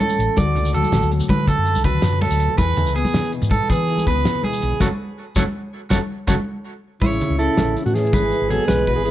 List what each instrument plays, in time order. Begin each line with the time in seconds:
Already playing: clean electric guitar E3 C#4 A4
0.00 clean electric guitar A2 A4, closed hi-hat, high conga
0.10 shekere
0.19 fingered electric bass A1, closed hi-hat
0.37 fingered electric bass D2, clean electric guitar D3 F#4 D5, kick, closed hi-hat, high conga, shekere
0.46 low conga
0.55 fingered electric bass C#2, clean electric guitar A3, closed hi-hat, low conga
0.65 shekere
0.74 fingered electric bass D2, clean electric guitar F#3 A4, closed hi-hat
0.83 high conga, low conga, shekere
0.92 fingered electric bass A1, snare, closed hi-hat, low conga, shekere
1.02 fingered electric bass D2, shekere
1.11 clean electric guitar A2, closed hi-hat
1.20 low conga, shekere
1.29 fingered electric bass D3, clean electric guitar B4, kick, snare, closed hi-hat, high conga, shekere
1.39 low conga
1.47 clean electric guitar D3 A4, kick, closed hi-hat, low conga, shekere
1.58 fingered electric bass F#2
1.66 closed hi-hat
1.75 fingered electric bass C#2, high conga, shekere
1.84 clean electric guitar F#3 B4, kick, closed hi-hat, low conga, shekere
1.94 fingered electric bass D2
2.02 fingered electric bass F#2, snare, closed hi-hat, shekere
2.12 low conga
2.21 clean electric guitar A2 A4, closed hi-hat, high conga
2.30 fingered electric bass D2, shekere
2.40 closed hi-hat
2.49 low conga
2.58 fingered electric bass E2, clean electric guitar E3 G#4 B4, kick, closed hi-hat, high conga, shekere
2.68 low conga
2.77 fingered electric bass E2, clean electric guitar E4, closed hi-hat, low conga
2.86 fingered electric bass C#2, shekere
2.96 clean electric guitar B3 G#4, closed hi-hat
3.05 high conga, low conga, shekere
3.14 snare, closed hi-hat, low conga, shekere
3.24 shekere
3.32 clean electric guitar B2, closed hi-hat
3.42 fingered electric bass G#2, low conga, shekere
3.51 clean electric guitar A4, kick, closed hi-hat, high conga, shekere
3.61 low conga
3.70 fingered electric bass E3, clean electric guitar E3 G#4 B4, kick, closed hi-hat, low conga, shekere
3.88 clean electric guitar E4, closed hi-hat
3.98 high conga, shekere
4.07 fingered electric bass C#2, clean electric guitar B3 B4, kick, closed hi-hat, low conga, shekere
4.25 snare, closed hi-hat, shekere
4.35 low conga
4.43 clean electric guitar B2 G#4, closed hi-hat, high conga
4.53 shekere
4.62 fingered electric bass B1, closed hi-hat
4.71 low conga
4.80 fingered electric bass F#1, clean electric guitar C#3 F#3 A3 F#4 A4 C#5, kick, snare, high conga, shekere
5.36 fingered electric bass F#1, clean electric guitar C#3 F#3 A3 F#4 A4 C#5, kick, snare, high conga, shekere
5.90 fingered electric bass F#1, clean electric guitar C#3 F#3 A3 F#4 A4 C#5, kick, snare, high conga, shekere
6.27 fingered electric bass F#1, clean electric guitar C#3 F#3 A3 F#4 A4 C#5, kick, snare, high conga, shekere
7.01 fingered electric bass A1, clean electric guitar A2 C#4 C#5, trombone C#3, alto saxophone E4, kick, closed hi-hat, high conga, shekere
7.12 shekere
7.20 clean electric guitar C#4, closed hi-hat, low conga
7.30 fingered electric bass C#2
7.38 trombone C#3, clean electric guitar C#4 A4, alto saxophone E4, closed hi-hat
7.57 fingered electric bass A1, clean electric guitar E3 C#4, snare, closed hi-hat, high conga, low conga, shekere
7.76 clean electric guitar C#4, closed hi-hat, shekere
7.85 fingered electric bass A2, trombone D3, alto saxophone F#4, low conga, shekere
7.93 trombone E3, clean electric guitar C#4, alto saxophone G#4, snare, closed hi-hat
8.05 clean electric guitar E4, low conga, shekere
8.13 fingered electric bass G#1, clean electric guitar G#2 C#4 B4, kick, closed hi-hat, high conga, low conga, shekere
8.22 clean electric guitar E4
8.32 clean electric guitar E4, closed hi-hat, low conga
8.41 fingered electric bass G#1
8.49 trombone F#3, clean electric guitar B3 G#4, alto saxophone A4, closed hi-hat, low conga, shekere
8.66 fingered electric bass B1, clean electric guitar E3 C#4, trombone G#3, alto saxophone B4, snare, closed hi-hat, high conga, shekere
8.78 clean electric guitar E4, low conga
8.87 clean electric guitar F#4 B4, kick, closed hi-hat
8.95 fingered electric bass G#1, trombone E3, alto saxophone G#4, clean electric guitar G#4
9.04 trombone E3, clean electric guitar C#4, alto saxophone G#4, closed hi-hat